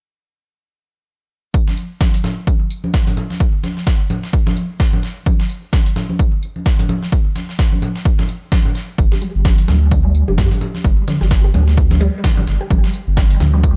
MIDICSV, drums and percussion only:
0, 0, Header, 1, 2, 480
1, 0, Start_track
1, 0, Tempo, 465116
1, 1592, Time_signature, 4, 2, 24, 8
1, 14204, End_track
2, 0, Start_track
2, 0, Title_t, "Drums"
2, 1591, Note_on_c, 9, 36, 108
2, 1591, Note_on_c, 9, 54, 81
2, 1694, Note_off_c, 9, 36, 0
2, 1694, Note_off_c, 9, 54, 0
2, 1729, Note_on_c, 9, 38, 49
2, 1729, Note_on_c, 9, 63, 44
2, 1830, Note_on_c, 9, 54, 65
2, 1832, Note_off_c, 9, 38, 0
2, 1832, Note_off_c, 9, 63, 0
2, 1933, Note_off_c, 9, 54, 0
2, 2071, Note_on_c, 9, 36, 117
2, 2071, Note_on_c, 9, 38, 114
2, 2071, Note_on_c, 9, 54, 86
2, 2071, Note_on_c, 9, 63, 82
2, 2174, Note_off_c, 9, 38, 0
2, 2174, Note_off_c, 9, 54, 0
2, 2174, Note_off_c, 9, 63, 0
2, 2175, Note_off_c, 9, 36, 0
2, 2209, Note_on_c, 9, 42, 39
2, 2311, Note_on_c, 9, 38, 38
2, 2311, Note_on_c, 9, 54, 61
2, 2311, Note_on_c, 9, 64, 94
2, 2312, Note_off_c, 9, 42, 0
2, 2414, Note_off_c, 9, 38, 0
2, 2414, Note_off_c, 9, 54, 0
2, 2414, Note_off_c, 9, 64, 0
2, 2552, Note_on_c, 9, 36, 112
2, 2552, Note_on_c, 9, 54, 80
2, 2552, Note_on_c, 9, 63, 42
2, 2655, Note_off_c, 9, 36, 0
2, 2655, Note_off_c, 9, 54, 0
2, 2655, Note_off_c, 9, 63, 0
2, 2792, Note_on_c, 9, 54, 68
2, 2895, Note_off_c, 9, 54, 0
2, 2929, Note_on_c, 9, 63, 78
2, 3031, Note_on_c, 9, 38, 110
2, 3031, Note_on_c, 9, 54, 79
2, 3032, Note_on_c, 9, 36, 114
2, 3033, Note_off_c, 9, 63, 0
2, 3134, Note_off_c, 9, 38, 0
2, 3134, Note_off_c, 9, 54, 0
2, 3135, Note_off_c, 9, 36, 0
2, 3170, Note_on_c, 9, 42, 42
2, 3170, Note_on_c, 9, 64, 85
2, 3271, Note_on_c, 9, 54, 63
2, 3272, Note_off_c, 9, 64, 0
2, 3272, Note_on_c, 9, 64, 80
2, 3273, Note_off_c, 9, 42, 0
2, 3375, Note_off_c, 9, 54, 0
2, 3375, Note_off_c, 9, 64, 0
2, 3409, Note_on_c, 9, 38, 40
2, 3410, Note_on_c, 9, 63, 40
2, 3511, Note_on_c, 9, 54, 82
2, 3512, Note_on_c, 9, 36, 112
2, 3513, Note_off_c, 9, 38, 0
2, 3513, Note_off_c, 9, 63, 0
2, 3615, Note_off_c, 9, 36, 0
2, 3615, Note_off_c, 9, 54, 0
2, 3751, Note_on_c, 9, 38, 47
2, 3751, Note_on_c, 9, 54, 63
2, 3752, Note_on_c, 9, 63, 75
2, 3855, Note_off_c, 9, 38, 0
2, 3855, Note_off_c, 9, 54, 0
2, 3855, Note_off_c, 9, 63, 0
2, 3890, Note_on_c, 9, 38, 35
2, 3991, Note_off_c, 9, 38, 0
2, 3991, Note_on_c, 9, 38, 112
2, 3991, Note_on_c, 9, 54, 87
2, 3992, Note_on_c, 9, 36, 115
2, 4094, Note_off_c, 9, 38, 0
2, 4094, Note_off_c, 9, 54, 0
2, 4095, Note_off_c, 9, 36, 0
2, 4232, Note_on_c, 9, 54, 64
2, 4232, Note_on_c, 9, 63, 44
2, 4232, Note_on_c, 9, 64, 91
2, 4335, Note_off_c, 9, 54, 0
2, 4336, Note_off_c, 9, 63, 0
2, 4336, Note_off_c, 9, 64, 0
2, 4370, Note_on_c, 9, 38, 46
2, 4471, Note_on_c, 9, 54, 81
2, 4472, Note_on_c, 9, 36, 120
2, 4473, Note_off_c, 9, 38, 0
2, 4575, Note_off_c, 9, 36, 0
2, 4575, Note_off_c, 9, 54, 0
2, 4610, Note_on_c, 9, 38, 52
2, 4610, Note_on_c, 9, 63, 75
2, 4610, Note_on_c, 9, 64, 84
2, 4712, Note_on_c, 9, 54, 70
2, 4713, Note_off_c, 9, 38, 0
2, 4714, Note_off_c, 9, 63, 0
2, 4714, Note_off_c, 9, 64, 0
2, 4815, Note_off_c, 9, 54, 0
2, 4952, Note_on_c, 9, 36, 123
2, 4952, Note_on_c, 9, 38, 100
2, 4952, Note_on_c, 9, 54, 79
2, 5055, Note_off_c, 9, 36, 0
2, 5055, Note_off_c, 9, 38, 0
2, 5055, Note_off_c, 9, 54, 0
2, 5090, Note_on_c, 9, 63, 44
2, 5090, Note_on_c, 9, 64, 83
2, 5192, Note_on_c, 9, 38, 41
2, 5192, Note_on_c, 9, 54, 66
2, 5193, Note_off_c, 9, 63, 0
2, 5193, Note_off_c, 9, 64, 0
2, 5295, Note_off_c, 9, 38, 0
2, 5295, Note_off_c, 9, 54, 0
2, 5431, Note_on_c, 9, 54, 81
2, 5432, Note_on_c, 9, 36, 109
2, 5432, Note_on_c, 9, 63, 79
2, 5535, Note_off_c, 9, 36, 0
2, 5535, Note_off_c, 9, 54, 0
2, 5535, Note_off_c, 9, 63, 0
2, 5569, Note_on_c, 9, 38, 52
2, 5672, Note_off_c, 9, 38, 0
2, 5672, Note_on_c, 9, 54, 64
2, 5775, Note_off_c, 9, 54, 0
2, 5912, Note_on_c, 9, 36, 114
2, 5912, Note_on_c, 9, 38, 114
2, 5912, Note_on_c, 9, 54, 88
2, 5912, Note_on_c, 9, 63, 48
2, 6015, Note_off_c, 9, 36, 0
2, 6015, Note_off_c, 9, 38, 0
2, 6015, Note_off_c, 9, 54, 0
2, 6015, Note_off_c, 9, 63, 0
2, 6050, Note_on_c, 9, 42, 41
2, 6152, Note_on_c, 9, 38, 39
2, 6152, Note_on_c, 9, 54, 65
2, 6152, Note_on_c, 9, 64, 91
2, 6153, Note_off_c, 9, 42, 0
2, 6255, Note_off_c, 9, 38, 0
2, 6255, Note_off_c, 9, 54, 0
2, 6255, Note_off_c, 9, 64, 0
2, 6289, Note_on_c, 9, 63, 77
2, 6392, Note_on_c, 9, 36, 117
2, 6392, Note_on_c, 9, 54, 89
2, 6393, Note_off_c, 9, 63, 0
2, 6495, Note_off_c, 9, 36, 0
2, 6495, Note_off_c, 9, 54, 0
2, 6632, Note_on_c, 9, 54, 67
2, 6735, Note_off_c, 9, 54, 0
2, 6769, Note_on_c, 9, 63, 45
2, 6871, Note_on_c, 9, 38, 107
2, 6871, Note_on_c, 9, 54, 80
2, 6872, Note_on_c, 9, 36, 117
2, 6873, Note_off_c, 9, 63, 0
2, 6974, Note_off_c, 9, 38, 0
2, 6974, Note_off_c, 9, 54, 0
2, 6975, Note_off_c, 9, 36, 0
2, 7009, Note_on_c, 9, 42, 43
2, 7010, Note_on_c, 9, 64, 84
2, 7111, Note_off_c, 9, 64, 0
2, 7111, Note_on_c, 9, 54, 65
2, 7111, Note_on_c, 9, 63, 78
2, 7111, Note_on_c, 9, 64, 77
2, 7112, Note_off_c, 9, 42, 0
2, 7214, Note_off_c, 9, 63, 0
2, 7214, Note_off_c, 9, 64, 0
2, 7215, Note_off_c, 9, 54, 0
2, 7250, Note_on_c, 9, 38, 39
2, 7351, Note_on_c, 9, 54, 83
2, 7352, Note_on_c, 9, 36, 117
2, 7353, Note_off_c, 9, 38, 0
2, 7454, Note_off_c, 9, 54, 0
2, 7455, Note_off_c, 9, 36, 0
2, 7592, Note_on_c, 9, 38, 49
2, 7592, Note_on_c, 9, 54, 64
2, 7592, Note_on_c, 9, 63, 43
2, 7695, Note_off_c, 9, 38, 0
2, 7695, Note_off_c, 9, 54, 0
2, 7695, Note_off_c, 9, 63, 0
2, 7730, Note_on_c, 9, 38, 39
2, 7832, Note_off_c, 9, 38, 0
2, 7832, Note_on_c, 9, 36, 110
2, 7832, Note_on_c, 9, 38, 117
2, 7832, Note_on_c, 9, 54, 87
2, 7935, Note_off_c, 9, 36, 0
2, 7935, Note_off_c, 9, 38, 0
2, 7935, Note_off_c, 9, 54, 0
2, 7970, Note_on_c, 9, 63, 75
2, 8072, Note_on_c, 9, 54, 64
2, 8072, Note_on_c, 9, 64, 89
2, 8073, Note_off_c, 9, 63, 0
2, 8175, Note_off_c, 9, 54, 0
2, 8175, Note_off_c, 9, 64, 0
2, 8210, Note_on_c, 9, 38, 49
2, 8312, Note_on_c, 9, 36, 120
2, 8312, Note_on_c, 9, 54, 85
2, 8313, Note_off_c, 9, 38, 0
2, 8415, Note_off_c, 9, 36, 0
2, 8415, Note_off_c, 9, 54, 0
2, 8450, Note_on_c, 9, 38, 50
2, 8450, Note_on_c, 9, 63, 42
2, 8450, Note_on_c, 9, 64, 80
2, 8552, Note_on_c, 9, 54, 65
2, 8553, Note_off_c, 9, 38, 0
2, 8553, Note_off_c, 9, 63, 0
2, 8553, Note_off_c, 9, 64, 0
2, 8655, Note_off_c, 9, 54, 0
2, 8792, Note_on_c, 9, 36, 121
2, 8792, Note_on_c, 9, 38, 113
2, 8792, Note_on_c, 9, 54, 85
2, 8792, Note_on_c, 9, 63, 83
2, 8895, Note_off_c, 9, 36, 0
2, 8895, Note_off_c, 9, 38, 0
2, 8895, Note_off_c, 9, 54, 0
2, 8895, Note_off_c, 9, 63, 0
2, 8930, Note_on_c, 9, 64, 81
2, 9031, Note_on_c, 9, 38, 40
2, 9031, Note_on_c, 9, 54, 65
2, 9033, Note_off_c, 9, 64, 0
2, 9135, Note_off_c, 9, 38, 0
2, 9135, Note_off_c, 9, 54, 0
2, 9271, Note_on_c, 9, 54, 80
2, 9272, Note_on_c, 9, 36, 114
2, 9374, Note_off_c, 9, 54, 0
2, 9375, Note_off_c, 9, 36, 0
2, 9410, Note_on_c, 9, 38, 50
2, 9410, Note_on_c, 9, 63, 44
2, 9512, Note_on_c, 9, 54, 65
2, 9513, Note_off_c, 9, 38, 0
2, 9513, Note_off_c, 9, 63, 0
2, 9615, Note_off_c, 9, 54, 0
2, 9751, Note_on_c, 9, 38, 112
2, 9751, Note_on_c, 9, 54, 86
2, 9752, Note_on_c, 9, 36, 110
2, 9752, Note_on_c, 9, 63, 79
2, 9855, Note_off_c, 9, 36, 0
2, 9855, Note_off_c, 9, 38, 0
2, 9855, Note_off_c, 9, 54, 0
2, 9855, Note_off_c, 9, 63, 0
2, 9890, Note_on_c, 9, 42, 39
2, 9991, Note_on_c, 9, 64, 87
2, 9992, Note_on_c, 9, 38, 40
2, 9992, Note_on_c, 9, 54, 65
2, 9993, Note_off_c, 9, 42, 0
2, 10094, Note_off_c, 9, 64, 0
2, 10095, Note_off_c, 9, 38, 0
2, 10095, Note_off_c, 9, 54, 0
2, 10232, Note_on_c, 9, 36, 117
2, 10232, Note_on_c, 9, 54, 86
2, 10232, Note_on_c, 9, 63, 44
2, 10335, Note_off_c, 9, 36, 0
2, 10335, Note_off_c, 9, 54, 0
2, 10335, Note_off_c, 9, 63, 0
2, 10472, Note_on_c, 9, 54, 67
2, 10575, Note_off_c, 9, 54, 0
2, 10610, Note_on_c, 9, 63, 76
2, 10712, Note_on_c, 9, 36, 120
2, 10712, Note_on_c, 9, 38, 106
2, 10712, Note_on_c, 9, 54, 83
2, 10713, Note_off_c, 9, 63, 0
2, 10815, Note_off_c, 9, 36, 0
2, 10815, Note_off_c, 9, 38, 0
2, 10815, Note_off_c, 9, 54, 0
2, 10849, Note_on_c, 9, 64, 73
2, 10850, Note_on_c, 9, 42, 41
2, 10951, Note_off_c, 9, 64, 0
2, 10951, Note_on_c, 9, 64, 76
2, 10952, Note_on_c, 9, 54, 63
2, 10953, Note_off_c, 9, 42, 0
2, 11054, Note_off_c, 9, 64, 0
2, 11055, Note_off_c, 9, 54, 0
2, 11089, Note_on_c, 9, 63, 42
2, 11090, Note_on_c, 9, 38, 40
2, 11192, Note_off_c, 9, 63, 0
2, 11192, Note_on_c, 9, 36, 109
2, 11192, Note_on_c, 9, 54, 84
2, 11193, Note_off_c, 9, 38, 0
2, 11295, Note_off_c, 9, 36, 0
2, 11295, Note_off_c, 9, 54, 0
2, 11431, Note_on_c, 9, 63, 71
2, 11432, Note_on_c, 9, 38, 51
2, 11432, Note_on_c, 9, 54, 62
2, 11534, Note_off_c, 9, 63, 0
2, 11535, Note_off_c, 9, 38, 0
2, 11535, Note_off_c, 9, 54, 0
2, 11570, Note_on_c, 9, 38, 36
2, 11671, Note_off_c, 9, 38, 0
2, 11671, Note_on_c, 9, 38, 115
2, 11671, Note_on_c, 9, 54, 89
2, 11672, Note_on_c, 9, 36, 111
2, 11774, Note_off_c, 9, 38, 0
2, 11774, Note_off_c, 9, 54, 0
2, 11775, Note_off_c, 9, 36, 0
2, 11911, Note_on_c, 9, 54, 64
2, 11911, Note_on_c, 9, 63, 42
2, 11911, Note_on_c, 9, 64, 89
2, 12014, Note_off_c, 9, 54, 0
2, 12014, Note_off_c, 9, 63, 0
2, 12014, Note_off_c, 9, 64, 0
2, 12050, Note_on_c, 9, 38, 49
2, 12151, Note_on_c, 9, 54, 89
2, 12152, Note_on_c, 9, 36, 117
2, 12153, Note_off_c, 9, 38, 0
2, 12255, Note_off_c, 9, 36, 0
2, 12255, Note_off_c, 9, 54, 0
2, 12289, Note_on_c, 9, 38, 51
2, 12290, Note_on_c, 9, 63, 76
2, 12290, Note_on_c, 9, 64, 75
2, 12392, Note_off_c, 9, 38, 0
2, 12392, Note_on_c, 9, 54, 68
2, 12393, Note_off_c, 9, 63, 0
2, 12393, Note_off_c, 9, 64, 0
2, 12495, Note_off_c, 9, 54, 0
2, 12631, Note_on_c, 9, 38, 111
2, 12631, Note_on_c, 9, 54, 82
2, 12632, Note_on_c, 9, 36, 114
2, 12735, Note_off_c, 9, 36, 0
2, 12735, Note_off_c, 9, 38, 0
2, 12735, Note_off_c, 9, 54, 0
2, 12770, Note_on_c, 9, 63, 41
2, 12770, Note_on_c, 9, 64, 80
2, 12872, Note_on_c, 9, 38, 43
2, 12872, Note_on_c, 9, 54, 66
2, 12873, Note_off_c, 9, 63, 0
2, 12873, Note_off_c, 9, 64, 0
2, 12975, Note_off_c, 9, 38, 0
2, 12975, Note_off_c, 9, 54, 0
2, 13111, Note_on_c, 9, 54, 82
2, 13112, Note_on_c, 9, 36, 105
2, 13112, Note_on_c, 9, 63, 74
2, 13215, Note_off_c, 9, 36, 0
2, 13215, Note_off_c, 9, 54, 0
2, 13215, Note_off_c, 9, 63, 0
2, 13250, Note_on_c, 9, 38, 53
2, 13351, Note_on_c, 9, 54, 65
2, 13353, Note_off_c, 9, 38, 0
2, 13454, Note_off_c, 9, 54, 0
2, 13591, Note_on_c, 9, 38, 109
2, 13591, Note_on_c, 9, 54, 86
2, 13592, Note_on_c, 9, 36, 107
2, 13592, Note_on_c, 9, 63, 43
2, 13694, Note_off_c, 9, 38, 0
2, 13694, Note_off_c, 9, 54, 0
2, 13695, Note_off_c, 9, 36, 0
2, 13695, Note_off_c, 9, 63, 0
2, 13730, Note_on_c, 9, 42, 41
2, 13831, Note_on_c, 9, 64, 95
2, 13832, Note_on_c, 9, 38, 40
2, 13832, Note_on_c, 9, 54, 66
2, 13833, Note_off_c, 9, 42, 0
2, 13934, Note_off_c, 9, 64, 0
2, 13935, Note_off_c, 9, 38, 0
2, 13935, Note_off_c, 9, 54, 0
2, 13969, Note_on_c, 9, 63, 70
2, 14072, Note_on_c, 9, 36, 116
2, 14072, Note_on_c, 9, 54, 85
2, 14073, Note_off_c, 9, 63, 0
2, 14175, Note_off_c, 9, 36, 0
2, 14175, Note_off_c, 9, 54, 0
2, 14204, End_track
0, 0, End_of_file